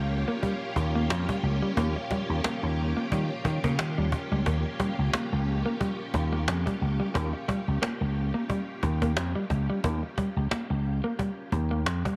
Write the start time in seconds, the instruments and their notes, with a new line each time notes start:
Already playing: slap bass C#2, string machine A#3 C#4 F4 G4
0.09 cajon slap
0.28 clean electric guitar A#3, cajon slap
0.43 clean electric guitar G3, cajon bass, cajon slap
0.76 slap bass D#2, muted clean electric guitar stroke, cajon bass
0.96 clean electric guitar A#3, cajon slap
1.10 slap bass F2, cajon slap
1.29 clean electric guitar G3, cajon bass
1.43 slap bass C#2, muted clean electric guitar stroke
1.62 clean electric guitar G3, cajon slap
1.77 slap bass D#2, clean electric guitar A#3, cajon bass
1.96 muted clean electric guitar stroke, cajon slap
2.11 clean electric guitar G3, cajon bass, cajon slap
2.29 slap bass D#2, cajon slap
2.44 clean electric guitar A#3, muted slap bass stroke, cajon slap
2.63 slap bass D#2, muted clean electric guitar stroke, cajon slap
2.77 cajon slap
2.96 clean electric guitar A#3, cajon slap
3.11 slap bass D#3, clean electric guitar G3, cajon bass, cajon slap
3.30 cajon slap
3.45 slap bass D#3, muted clean electric guitar stroke, cajon bass
3.64 slap bass C#3, clean electric guitar A#3, cajon bass
3.79 slap bass D#3, cajon slap
3.98 slap bass D#2, clean electric guitar G3
4.12 muted clean electric guitar stroke, cajon bass
4.32 slap bass C#2, clean electric guitar G3, cajon slap
4.46 slap bass D#2, clean electric guitar A#3, cajon bass
4.66 muted clean electric guitar stroke
4.80 clean electric guitar G3, cajon bass
4.98 slap bass C#2, cajon slap
5.14 clean electric guitar A#3, cajon slap
5.32 slap bass C#2, muted clean electric guitar stroke, cajon slap
5.47 cajon slap
5.65 clean electric guitar A#3, cajon slap
5.80 clean electric guitar G3, cajon bass, cajon slap
6.14 slap bass D#2, muted clean electric guitar stroke, cajon bass
6.33 clean electric guitar A#3, cajon slap
6.48 slap bass F2, cajon slap
6.66 clean electric guitar G3, cajon bass
6.81 slap bass C#2, muted clean electric guitar stroke
7.00 clean electric guitar G3, cajon slap
7.14 slap bass D#2, clean electric guitar A#3, cajon bass
7.33 muted clean electric guitar stroke
7.48 clean electric guitar G3, cajon bass
7.67 slap bass C#2, cajon slap
7.82 clean electric guitar A#3, cajon slap
8.01 slap bass C#2, muted clean electric guitar stroke, cajon slap
8.16 cajon slap
8.34 clean electric guitar A#3, cajon slap
8.49 clean electric guitar G3, cajon bass, cajon slap
8.83 slap bass D#2, muted clean electric guitar stroke, cajon bass
9.02 clean electric guitar A#3, cajon bass
9.17 slap bass F2, cajon slap
9.35 clean electric guitar G3
9.50 slap bass C#2, muted clean electric guitar stroke, cajon bass
9.69 clean electric guitar G3, cajon slap
9.84 slap bass D#2, clean electric guitar A#3, cajon bass
10.03 muted clean electric guitar stroke
10.18 clean electric guitar G3, cajon bass
10.36 slap bass C#2, cajon slap
10.51 clean electric guitar A#3, cajon slap
10.70 slap bass C#2, muted clean electric guitar stroke, cajon slap
10.85 cajon slap
11.04 clean electric guitar A#3, cajon slap
11.19 clean electric guitar G3, cajon bass, cajon slap
11.52 slap bass D#2, muted clean electric guitar stroke, cajon bass
11.71 clean electric guitar A#3, cajon slap
11.86 slap bass F2, cajon slap
12.05 clean electric guitar G3, cajon bass